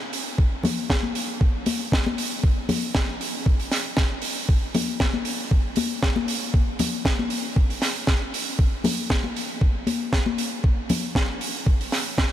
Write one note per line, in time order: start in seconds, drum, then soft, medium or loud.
0.13 open hi-hat loud
0.38 kick loud
0.64 open hi-hat loud
0.64 high conga medium
0.64 low conga medium
0.90 kick loud
0.90 snare loud
1.03 high conga medium
1.15 open hi-hat loud
1.41 kick loud
1.66 open hi-hat loud
1.66 high conga medium
1.92 kick loud
1.92 snare loud
2.06 high conga medium
2.18 open hi-hat loud
2.44 kick loud
2.69 open hi-hat loud
2.69 high conga loud
2.69 low conga medium
2.95 kick loud
2.95 snare loud
3.21 open hi-hat loud
3.46 kick loud
3.60 open hi-hat medium
3.71 snare medium
3.71 open hi-hat loud
3.97 kick loud
3.97 snare loud
4.22 open hi-hat loud
4.49 kick loud
4.74 open hi-hat loud
4.74 high conga loud
4.74 low conga medium
5.00 kick loud
5.00 snare loud
5.14 high conga medium
5.25 open hi-hat loud
5.51 kick loud
5.76 open hi-hat loud
5.76 high conga loud
6.03 kick loud
6.03 snare loud
6.16 high conga medium
6.28 open hi-hat loud
6.54 kick loud
6.79 open hi-hat loud
6.79 high conga loud
6.79 low conga medium
7.05 kick loud
7.05 snare loud
7.19 high conga medium
7.30 open hi-hat loud
7.56 kick loud
7.70 open hi-hat medium
7.82 snare medium
7.82 open hi-hat loud
8.07 kick loud
8.07 snare loud
8.34 open hi-hat loud
8.59 kick loud
8.84 open hi-hat loud
8.84 high conga loud
8.84 low conga medium
9.10 kick loud
9.10 snare loud
9.24 high conga medium
9.36 open hi-hat loud
9.61 kick loud
9.87 open hi-hat loud
9.87 high conga medium
10.13 kick loud
10.13 snare loud
10.26 high conga medium
10.38 open hi-hat loud
10.64 kick loud
10.89 open hi-hat loud
10.89 high conga medium
10.89 low conga medium
11.15 kick loud
11.15 snare loud
11.41 open hi-hat loud
11.67 kick loud
11.81 open hi-hat medium
11.92 snare medium
11.92 open hi-hat loud
12.18 kick loud
12.18 snare loud